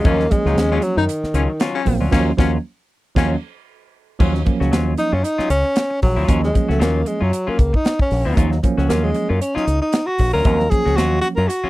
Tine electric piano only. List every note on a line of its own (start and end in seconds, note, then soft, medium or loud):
0.04 0.22 F3 medium
0.04 0.22 F#3 medium
0.04 0.22 A#3 medium
0.04 0.23 C#4 medium
0.30 0.96 F3 medium
0.30 0.97 F#3 medium
0.30 0.97 A#3 medium
0.30 0.97 C#4 medium
1.85 2.03 F3 loud
1.85 2.04 F#3 medium
1.85 2.04 A#3 medium
1.85 2.04 C4 loud
2.11 2.30 F3 loud
2.11 2.30 F#3 loud
2.11 2.31 A#3 loud
2.11 2.31 C#4 loud
2.37 2.56 F3 medium
2.37 2.56 F#3 loud
2.37 2.57 A#3 loud
2.37 2.57 C#4 medium
3.15 3.34 F3 medium
3.15 3.34 F#3 medium
3.15 3.35 A#3 loud
3.15 3.35 C#4 loud
4.19 4.37 F3 medium
4.19 4.38 F#3 medium
4.19 4.38 A#3 medium
4.19 4.38 C#4 medium
4.45 5.12 F3 medium
4.45 5.13 F#3 medium
4.45 5.13 A#3 medium
4.45 5.13 C#4 medium
6.28 6.46 F3 medium
6.28 6.46 F#3 medium
6.28 6.46 A#3 medium
6.28 6.47 C#4 medium
6.54 7.21 F3 medium
6.54 7.21 F#3 medium
6.54 7.21 A#3 medium
6.54 7.21 C#4 medium
8.36 8.54 F3 medium
8.36 8.54 F#3 medium
8.36 8.55 A#3 medium
8.36 8.55 D#4 loud
8.63 9.29 F3 medium
8.63 9.29 F#3 medium
8.63 9.30 A#3 medium
8.63 9.30 C#4 medium
10.44 10.62 F3 medium
10.44 10.62 F#3 medium
10.44 10.63 A#3 medium
10.44 10.63 C4 medium
10.70 11.37 F3 medium
10.70 11.37 F#3 medium
10.70 11.37 A#3 medium
10.70 11.38 C#4 medium